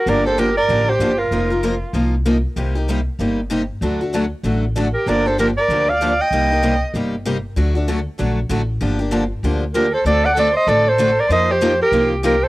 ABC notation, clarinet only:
X:1
M:4/4
L:1/8
Q:"Swing" 1/4=192
K:Gm
V:1 name="Clarinet"
d c B d2 c2 B- | B3 z4 z | z8 | z6 z B |
d c B d2 f2 g- | g3 z4 z | z8 | z6 B c |
d ^f d e d c2 d | e c2 B2 z B c |]